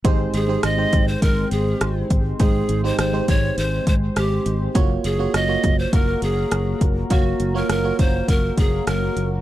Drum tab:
HH |xxxxxxxx|xxxxxxxx|xxxxxxxx|xxxxxxxx|
SD |--r---r-|--r---r-|--r---r-|--r---r-|
BD |o--oo--o|o--o-o--|o--oo--o|o--ooo--|